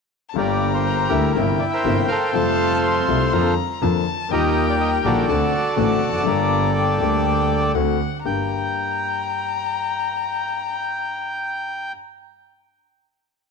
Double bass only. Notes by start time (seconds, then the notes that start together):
0.36 G1
1.10 D2
1.35 G1
1.85 G1
2.34 F2
3.08 C2
3.32 F2
3.82 F2
4.31 D#2
5.05 A#1
5.29 D2
5.77 A1
6.02 F1
6.27 G1
7.00 D2
7.74 D2
8.25 G1